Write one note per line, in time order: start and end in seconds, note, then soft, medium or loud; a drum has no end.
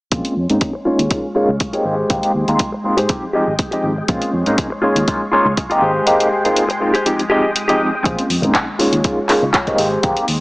0.11 0.21 A#1 medium
0.11 0.32 G#3 medium
0.11 4.04 G#3 medium
0.11 0.32 A#3 medium
0.11 0.32 C4 medium
0.11 0.33 C#4 medium
0.11 0.33 F4 loud
0.11 0.85 C#5 medium
0.11 0.85 C6 medium
0.11 kick loud
0.11 closed hi-hat medium
0.25 closed hi-hat medium
0.37 0.46 F2 medium
0.49 0.58 G#2 medium
0.49 0.70 G#3 medium
0.49 0.70 A#3 medium
0.49 0.70 C4 medium
0.49 0.70 C#4 medium
0.49 0.70 D#4 medium
0.49 closed hi-hat soft
0.60 muted clean electric guitar stroke soft
0.60 kick loud
0.60 closed hi-hat medium
0.73 muted clean electric guitar stroke medium
0.85 0.99 G#3 medium
0.85 1.00 A#3 medium
0.85 1.00 C#4 medium
0.85 1.00 D#4 medium
0.85 1.26 F4 medium
0.85 1.00 F4 medium
0.85 1.27 G#4 medium
0.85 1.27 C#5 medium
0.85 1.85 F5 medium
0.85 1.85 C#6 medium
0.85 muted fingered electric bass stroke soft
0.99 1.07 D#2 medium
0.99 closed hi-hat soft
1.10 1.24 G#3 medium
1.10 1.24 A#3 medium
1.10 1.24 C#4 medium
1.10 1.24 D#4 medium
1.10 1.24 F4 loud
1.10 kick loud
1.10 closed hi-hat medium
1.35 1.49 G#3 medium
1.35 1.49 A#3 medium
1.35 1.49 C#4 medium
1.35 1.49 D#4 medium
1.35 1.54 F4 loud
1.35 1.49 F4 medium
1.35 1.55 G#4 loud
1.35 1.55 C#5 loud
1.49 1.57 C#2 loud
1.60 kick loud
1.60 closed hi-hat medium
1.73 1.93 G#3 medium
1.73 1.94 A#3 medium
1.73 1.94 C4 medium
1.73 1.94 D#4 medium
1.73 1.84 F4 medium
1.73 1.94 G4 medium
1.73 1.84 G#4 medium
1.73 1.86 C#5 medium
1.73 closed hi-hat soft
1.84 2.03 G#1 loud
1.84 2.45 G4 medium
1.84 2.46 G#4 medium
1.84 2.46 C5 medium
1.84 3.08 G5 medium
1.84 3.08 C6 medium
2.10 2.19 G#1 medium
2.10 2.31 G#3 medium
2.10 2.31 A#3 medium
2.10 2.31 C4 medium
2.10 2.31 D#4 medium
2.10 2.31 G4 loud
2.10 kick loud
2.10 closed hi-hat medium
2.23 closed hi-hat soft
2.35 2.44 D#2 medium
2.48 2.56 D#2 medium
2.48 2.68 G#3 medium
2.48 2.68 A#3 medium
2.48 2.68 C4 medium
2.48 2.69 D#4 medium
2.48 2.69 F4 medium
2.48 closed hi-hat soft
2.59 muted clean electric guitar stroke soft
2.59 kick loud
2.59 closed hi-hat medium
2.72 muted clean electric guitar stroke medium
2.84 2.98 G#3 medium
2.84 2.98 A#3 medium
2.84 2.98 C4 medium
2.84 2.98 D#4 medium
2.84 2.98 F4 medium
2.84 muted clean electric guitar stroke soft
2.84 muted fingered electric bass stroke soft
2.97 3.06 G#2 medium
2.97 3.09 G4 loud
2.97 3.09 G#4 loud
2.97 3.10 C5 loud
2.97 closed hi-hat medium
3.09 3.23 F3 medium
3.09 3.23 G#3 medium
3.09 3.23 C4 medium
3.09 3.23 D#4 medium
3.09 3.23 G4 medium
3.09 4.08 G5 medium
3.09 4.08 D#6 medium
3.09 kick loud
3.09 closed hi-hat medium
3.33 3.48 F3 medium
3.33 3.48 G#3 medium
3.33 3.48 C4 medium
3.33 3.48 D#4 medium
3.33 3.53 G4 loud
3.33 3.48 G4 loud
3.33 3.53 G#4 loud
3.33 3.54 D#5 loud
3.48 3.55 G#1 medium
3.59 kick loud
3.59 closed hi-hat medium
3.71 3.92 F3 medium
3.71 3.92 G#3 medium
3.71 3.92 C4 medium
3.71 3.93 D#4 medium
3.71 3.83 G4 medium
3.71 3.93 G4 medium
3.71 3.84 G#4 medium
3.71 3.84 D#5 medium
3.71 closed hi-hat soft
3.84 4.01 G#1 medium
3.96 muted clean electric guitar stroke soft
4.08 4.18 A#1 loud
4.08 8.01 G#3 medium
4.08 4.29 G#3 medium
4.08 4.29 A#3 medium
4.08 4.29 C4 medium
4.08 4.30 C#4 medium
4.08 4.30 F4 loud
4.08 4.82 C#5 medium
4.08 4.82 C6 medium
4.08 kick loud
4.08 closed hi-hat medium
4.22 closed hi-hat medium
4.33 4.42 F2 medium
4.46 4.54 G#2 medium
4.46 4.66 G#3 medium
4.46 4.67 A#3 medium
4.46 4.67 C4 medium
4.46 4.67 C#4 medium
4.46 4.67 D#4 loud
4.46 closed hi-hat soft
4.57 muted clean electric guitar stroke soft
4.57 kick loud
4.57 closed hi-hat medium
4.70 muted clean electric guitar stroke medium
4.82 4.96 G#3 medium
4.82 4.96 A#3 medium
4.82 4.97 C#4 medium
4.82 4.97 D#4 medium
4.82 5.23 F4 medium
4.82 4.97 F4 medium
4.82 5.23 G#4 medium
4.82 5.24 C#5 medium
4.82 5.81 F5 medium
4.82 5.81 C#6 medium
4.82 muted fingered electric bass stroke soft
4.96 5.04 D#2 medium
4.96 closed hi-hat soft
5.08 5.21 G#3 medium
5.08 5.21 A#3 medium
5.08 5.21 C#4 medium
5.08 5.22 D#4 medium
5.08 5.22 F4 loud
5.08 kick loud
5.08 closed hi-hat medium
5.32 5.46 G#3 medium
5.32 5.46 A#3 medium
5.32 5.46 C#4 medium
5.32 5.46 D#4 medium
5.32 5.51 F4 loud
5.32 5.46 F4 loud
5.32 5.52 G#4 loud
5.32 5.52 C#5 loud
5.46 5.53 C#2 medium
5.57 kick loud
5.57 closed hi-hat medium
5.70 5.91 G#3 medium
5.70 5.91 A#3 medium
5.70 5.91 C4 medium
5.70 5.91 D#4 medium
5.70 5.81 F4 medium
5.70 5.91 G4 medium
5.70 5.81 G#4 medium
5.70 5.83 D#5 medium
5.70 closed hi-hat soft
5.81 5.99 G#1 loud
5.81 6.42 G4 medium
5.81 6.43 G#4 medium
5.81 6.43 C5 loud
5.81 7.04 G5 medium
5.81 7.05 C6 medium
6.06 6.27 G#3 medium
6.06 6.27 A#3 medium
6.06 6.27 C4 medium
6.06 6.28 D#4 medium
6.06 6.28 G4 loud
6.06 closed hi-hat medium
6.20 closed hi-hat soft
6.44 6.65 G#3 medium
6.44 6.65 A#3 medium
6.44 6.65 C4 medium
6.44 6.65 D#4 medium
6.44 6.65 F4 medium
6.44 closed hi-hat soft
6.56 muted clean electric guitar stroke soft
6.56 closed hi-hat medium
6.69 muted clean electric guitar stroke medium
6.69 closed hi-hat soft
6.80 6.94 G#3 medium
6.80 6.95 A#3 medium
6.80 6.95 C4 medium
6.80 6.95 D#4 medium
6.80 6.95 F4 medium
6.80 muted clean electric guitar stroke soft
6.94 7.06 G4 loud
6.94 7.06 G#4 loud
6.94 7.07 C5 loud
6.94 closed hi-hat soft
7.06 7.19 F3 medium
7.06 7.19 G#3 medium
7.06 7.19 C4 medium
7.06 7.20 D#4 medium
7.06 7.20 G4 loud
7.06 8.04 G5 medium
7.06 8.04 D#6 medium
7.06 closed hi-hat medium
7.19 closed hi-hat soft
7.30 7.44 F3 medium
7.30 7.44 G#3 medium
7.30 7.44 C4 medium
7.30 7.44 D#4 medium
7.30 7.49 G4 loud
7.30 7.44 G4 medium
7.30 7.50 G#4 loud
7.30 7.50 D#5 loud
7.56 closed hi-hat medium
7.68 7.89 F3 medium
7.68 7.89 G#3 medium
7.68 7.89 C4 medium
7.68 7.89 D#4 medium
7.68 7.80 G4 medium
7.68 7.89 G4 medium
7.68 7.80 G#4 medium
7.68 7.81 D#5 loud
7.68 closed hi-hat soft
7.93 muted clean electric guitar stroke soft
8.04 8.14 A#1 medium
8.04 8.26 G#3 medium
8.04 10.40 G#3 medium
8.04 8.26 A#3 medium
8.04 8.26 C4 medium
8.04 8.18 C#4 loud
8.04 8.79 C#4 medium
8.04 8.26 C#4 medium
8.04 8.26 F4 loud
8.04 8.19 G#4 loud
8.04 8.19 C5 loud
8.04 8.79 C6 medium
8.04 kick loud
8.04 closed hi-hat medium
8.19 closed hi-hat medium
8.29 8.39 F2 medium
8.29 muted clean electric guitar stroke soft
8.29 open hi-hat loud
8.42 8.51 G#2 medium
8.42 8.63 G#3 medium
8.42 8.63 A#3 medium
8.42 8.63 C4 medium
8.42 8.63 C#4 medium
8.42 8.64 D#4 loud
8.42 muted clean electric guitar stroke medium
8.42 closed hi-hat soft
8.42 tambourine medium
8.42 low conga loud
8.54 muted clean electric guitar stroke soft
8.54 kick loud
8.54 clap loud
8.54 closed hi-hat medium
8.68 tambourine soft
8.79 8.93 G#3 medium
8.79 8.93 A#3 medium
8.79 8.93 C#4 medium
8.79 8.94 D#4 medium
8.79 9.29 F4 medium
8.79 8.94 F4 medium
8.79 9.29 G#4 medium
8.79 9.30 C#5 loud
8.79 9.78 F5 medium
8.79 9.78 C#6 medium
8.79 muted fingered electric bass stroke soft
8.79 open hi-hat loud
8.93 9.01 D#2 medium
8.93 closed hi-hat medium
8.93 tambourine medium
9.04 9.18 G#3 medium
9.04 9.18 A#3 medium
9.04 9.18 C#4 medium
9.04 9.18 D#4 medium
9.04 9.18 F4 loud
9.04 kick loud
9.04 closed hi-hat medium
9.17 tambourine soft
9.29 9.43 G#3 medium
9.29 9.43 A#3 medium
9.29 9.43 C#4 medium
9.29 9.43 D#4 medium
9.29 9.43 F4 medium
9.29 clap medium
9.29 open hi-hat loud
9.42 9.50 C#2 loud
9.42 muted clean electric guitar stroke soft
9.42 tambourine medium
9.53 9.78 F4 medium
9.53 9.78 G#4 medium
9.53 9.79 C#5 loud
9.53 kick loud
9.53 clap loud
9.53 closed hi-hat medium
9.67 9.87 G#3 medium
9.67 9.87 A#3 medium
9.67 9.87 C4 medium
9.67 9.88 D#4 medium
9.67 9.88 G4 medium
9.67 kick medium
9.67 closed hi-hat soft
9.78 9.96 G#1 loud
9.78 10.19 G4 medium
9.78 10.19 G#4 medium
9.78 10.20 C5 medium
9.78 10.40 G5 medium
9.78 10.40 C6 medium
9.78 open hi-hat loud
9.92 tambourine medium
10.03 10.13 G#1 medium
10.03 10.24 G#3 medium
10.03 10.24 A#3 medium
10.03 10.24 C4 medium
10.03 10.24 D#4 medium
10.03 10.24 G4 loud
10.03 kick loud
10.03 closed hi-hat medium
10.17 closed hi-hat medium
10.17 tambourine soft
10.28 10.37 D#2 medium
10.28 muted clean electric guitar stroke soft
10.28 open hi-hat loud